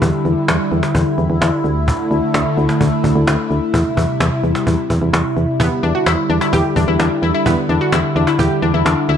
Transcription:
Already playing: analog synth pad D3 G3 E4
0.02 fm bass E2, cajon bass
0.25 fm bass E2, cajon slap
0.48 fm bass E2, cajon slap
0.72 fm bass E2, cajon slap
0.83 cajon slap
0.95 fm bass E2, cajon bass
1.18 fm bass E2, cajon slap
1.30 fm bass E2
1.41 fm bass E2, cajon slap
1.64 fm bass D2, analog synth pad D3 A3, cajon slap
1.88 cajon bass
2.11 fm bass D2, cajon slap
2.34 fm bass D2, cajon slap
2.57 fm bass D2, cajon slap
2.69 cajon slap
2.81 fm bass D2, cajon bass
3.04 fm bass D2, cajon bass
3.16 fm bass D2
3.27 fm bass D2, cajon slap
3.50 fm bass D2, cajon slap
3.74 fm bass E2, analog synth pad C3 G3, cajon bass
3.97 fm bass E2, cajon bass
4.20 fm bass E2, cajon slap
4.44 fm bass E2, cajon slap
4.55 cajon slap
4.67 fm bass E2, cajon bass
4.90 fm bass E2, cajon bass
5.02 fm bass E2
5.13 fm bass E2, cajon slap
5.37 fm bass E2, cajon slap
5.60 fm bass E2, analog synth pad D3, synth pluck B3, cajon bass
5.83 fm bass E2, synth pluck D4, cajon slap
5.95 synth pluck F#4
6.06 fm bass E2, synth pluck E4, cajon slap
6.30 fm bass E2, synth pluck D4, cajon slap
6.41 synth pluck E4, cajon slap
6.53 fm bass E2, synth pluck G4, cajon bass
6.76 fm bass E2, synth pluck D4, cajon bass
6.88 fm bass E2, synth pluck E4
6.99 fm bass E2, synth pluck D4, cajon slap
7.23 fm bass E2, synth pluck E4, cajon slap
7.34 synth pluck E4
7.46 fm bass E2, synth pluck B3, cajon bass
7.69 fm bass E2, synth pluck D4, cajon slap
7.81 synth pluck F#4
7.92 fm bass E2, synth pluck E4, cajon slap
8.16 fm bass E2, synth pluck D4, cajon slap
8.27 synth pluck E4, cajon slap
8.39 fm bass E2, synth pluck G4, cajon bass
8.62 fm bass E2, synth pluck D4, cajon slap
8.74 fm bass E2, synth pluck E4
8.85 fm bass E2, synth pluck D4, cajon slap
9.09 fm bass D2, analog synth pad A3, synth pluck E4, cajon slap

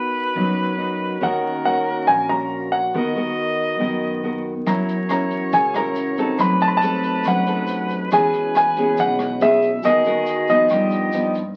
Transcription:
Already playing: french horn section D#3 B3 F#4, nylon-string guitar B3 D#4 F#4, flute B4
0.35 upright bass F#2, nylon-string guitar F#3 D#4 F#4
0.78 nylon-string guitar D#4 F#4
1.21 upright bass D#2, nylon-string guitar D#3 C#4 F#4 A#4, french horn section A#3 C#4, flute A#4, grand piano F#5
1.65 nylon-string guitar C#4 F#4 A#4, grand piano F#5
2.07 upright bass A#1, nylon-string guitar A#2, grand piano G#5
2.29 nylon-string guitar C#4 F#4 A#4, grand piano A#5
2.72 grand piano F#5
2.92 upright bass D#2, french horn section D#3 B3 A#4, nylon-string guitar D#3 B3 F#4 A#4, flute D#5
3.16 nylon-string guitar B3 F#4 A#4
3.79 upright bass F#2, nylon-string guitar D#3 B3 F#4 A#4
4.23 nylon-string guitar B3 F#4 A#4
4.66 upright bass F#2, french horn section E3 C#4 F#4, nylon-string guitar F#3 C#4 E4 A#4, flute C#5, grand piano A#5, kick, cross-stick, closed hi-hat, shaker
4.89 closed hi-hat, shaker
5.09 nylon-string guitar C#4 E4 A#4, grand piano A#5, cross-stick, closed hi-hat, shaker
5.31 kick, closed hi-hat, shaker
5.53 upright bass C#2, nylon-string guitar C#3, grand piano G#5, kick, closed hi-hat, shaker
5.74 nylon-string guitar C#4 E4 A#4, grand piano A#5, cross-stick, closed hi-hat, shaker
5.95 closed hi-hat, shaker
6.17 nylon-string guitar C4 D#4 A4, kick, closed hi-hat, shaker
6.37 upright bass F#2, french horn section B2 C3 A3 D#4, nylon-string guitar F#3, flute B4, grand piano B5, kick, cross-stick, closed hi-hat, shaker
6.60 grand piano A5, closed hi-hat, shaker
6.68 grand piano B5
6.77 grand piano A5
6.82 nylon-string guitar C4 D#4 A4, closed hi-hat, shaker
7.03 kick, closed hi-hat, shaker
7.24 upright bass F#2, nylon-string guitar F#3, grand piano F#5, kick, cross-stick, closed hi-hat, shaker
7.46 nylon-string guitar C4 D#4 A4, closed hi-hat, shaker
7.67 closed hi-hat, shaker
7.89 kick, closed hi-hat, shaker
8.11 upright bass E2, french horn section C#3 G#3 E4, nylon-string guitar E3 B3 C#4 G#4, flute B4, grand piano G#5, kick, cross-stick, closed hi-hat, shaker
8.33 closed hi-hat, shaker
8.55 grand piano G#5, cross-stick, closed hi-hat, shaker
8.76 nylon-string guitar B3 C#4 G#4, kick, closed hi-hat, shaker
8.97 upright bass B1, nylon-string guitar B2, grand piano F#5, kick, closed hi-hat, shaker
9.19 cross-stick, closed hi-hat, shaker
9.41 nylon-string guitar B3 C#4 G#4, grand piano E5, closed hi-hat, shaker
9.62 kick, closed hi-hat, shaker
9.82 upright bass D#2, french horn section D#3 F#4, nylon-string guitar D#3 B3 F#4 A#4, flute G#4, grand piano D#5, kick, cross-stick, closed hi-hat, shaker
10.04 nylon-string guitar B3 F#4 A#4, closed hi-hat, shaker
10.26 closed hi-hat, shaker
10.47 nylon-string guitar F3 B3 D#4, grand piano D#5, kick, closed hi-hat, shaker
10.69 upright bass G2, nylon-string guitar G2, french horn section G3 B3 F4, flute G4, kick, cross-stick, closed hi-hat, shaker
10.90 closed hi-hat, shaker
11.12 nylon-string guitar F3 B3 D#4, closed hi-hat, shaker
11.34 kick, closed hi-hat, shaker

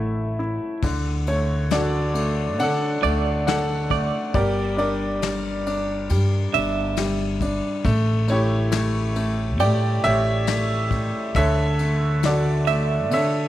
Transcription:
Already playing: upright bass A1, upright piano A3 E4 A4 C#5 E5 F#5, clean electric guitar C#5
0.39 upright piano E4
0.83 upright bass D2, upright piano D3, kick, ride
1.27 upright piano A3 C#5, ride
1.70 upright piano D4 F#4 A4 D5, snare, ride
2.14 upright piano A3, ride
2.59 upright bass D3, upright piano D4 A4 F#5, ride
3.02 upright bass D2, upright piano A3, clean electric guitar D5, ride
3.46 upright piano D4 A4 F#5, snare, ride
3.90 upright piano A3, clean electric guitar D5, kick, ride
4.34 upright bass G1, upright piano G3 G4 A#4 D5, kick, ride
4.77 upright piano D4 G4 A#4 D5, ride
5.22 upright piano G3, snare, ride
5.66 upright piano D4, ride
6.10 upright bass G2, upright piano G3, ride
6.53 upright bass G1, upright piano D4, clean electric guitar E5, ride
6.97 upright piano G3, snare, ride
7.41 upright piano D4, kick, ride
7.85 upright bass A1, upright piano A3, kick, ride
8.28 upright piano A3 E4 G4 C#5, ride
8.72 upright piano A3, snare, ride
9.16 upright piano A3, ride
9.60 upright bass A2, upright piano A3 G4 D5, clean electric guitar G5, ride
10.04 upright bass A1, upright piano A3 G4 C#5 E5, ride
10.47 upright piano A3, snare, ride
10.91 upright piano A3, kick, ride
11.35 upright bass D2, upright piano D3 A4 C#5 E5, kick, ride
11.79 upright piano A3, ride
12.23 upright piano D3 F#4 A4 D5, snare, ride
12.67 upright piano A3, clean electric guitar E5, ride
13.11 upright piano D3 A4 C#5 E5, upright bass D3, ride

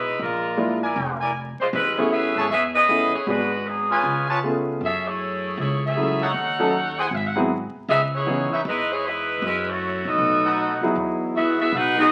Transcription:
Already playing: upright bass B1, saxophone section G#3 D#4 E4 B4
0.19 upright bass A#1, saxophone section G#3 D4 F4 A#4
0.57 grand piano G#3 A#3 D4 E4 F4
0.82 trumpet section E4 A#4 D5 G#5
0.96 upright bass F1
1.20 trumpet section E4 A#4 D5 G#5
1.59 saxophone section G#3 D4 F4 C5, muted upright bass stroke
1.73 upright bass A1, saxophone section G#3 C#4 E4 B4
1.97 grand piano A3 B3 C#4 E4 G#4, saxophone section B3 E4 G#4 C#5
2.12 saxophone section C#4 G#4 B4 E5
2.35 upright bass G#1, trumpet section G#4 B4 C#5 A5
2.50 upright bass E2, saxophone section C#4 G#4 B4 E5
2.75 saxophone section C#4 G#4 B4 D#5
2.89 grand piano A3 B3 C#4 E4 G#4
3.13 saxophone section B3 E4 G#4 C#5, muted upright bass stroke
3.27 upright bass G#1, grand piano G#3 B3 D4 F#4 G#4, saxophone section G#3 D4 F#4 B4
3.67 saxophone section F#3 B3 D4 G#4
3.90 trumpet section F4 B4 C#5 G#5
4.03 upright bass C#2
4.29 trumpet section F4 B4 C#5 A5
4.44 grand piano A3 B3 C#4 F4 G#4
4.81 upright bass F#2, saxophone section C#4 G#4 A4 E5
5.07 saxophone section A3 E4 G#4 C#5
5.58 upright bass C#2, saxophone section A3 E4 G#4 C#5
5.86 saxophone section C#4 G#4 A4 E5
5.96 grand piano F#3 A3 C#4 E4 G#4
6.21 trumpet section D#4 A4 C#5 F#5, saxophone section D#4 A4 F#5
6.25 saxophone section C#5
6.34 upright bass D#2
6.59 grand piano F#3 A3 C#4 D#4 A4
6.97 trumpet section E4 G#4 C5 F#5, saxophone section G#5
7.06 saxophone section F#5
7.11 upright bass G#1, saxophone section E5
7.27 saxophone section F#5
7.35 grand piano F#3 B3 C4 E4 G#4
7.75 muted upright bass stroke
7.88 upright bass C#2, saxophone section B3 D#4 G#4 E5
8.15 saxophone section B3 E4 G#4 C#5
8.27 grand piano E3 B3 C#4 D#4 G#4
8.51 trumpet section D#4 B4 C#5 E5, muted upright bass stroke
8.65 upright bass E2, saxophone section G#3 D#4 E4 B4
8.93 saxophone section B3 E4 G#4 C#5
9.07 saxophone section G#3 D#4 E4 B4
9.42 upright bass F#2, saxophone section G#3 C#4 B4
9.46 saxophone section E4
9.69 saxophone section A3 E4 F#4 C#5
10.05 upright bass A#1, trombone section F#3 A3 D#4, saxophone section B3 F#4 A4 D#5
10.18 upright bass B1
10.43 trumpet section D#4 A4 B4 F#5
10.81 upright bass F2, grand piano F#3 B3 D#4 E4 G#4
10.95 upright bass E2
11.34 trombone section G#3 B3 E4, saxophone section B3 F#4 G#4 E5
11.59 trombone section G#3 B3 E4, saxophone section B3 F#4 G#4 E5
11.72 upright bass B1, trombone section B3 D#4 F#4, saxophone section D#4 G#4 B4 F#5
11.97 trombone section G#3 B3 D#4, saxophone section B3 F#4 G#4 D#5

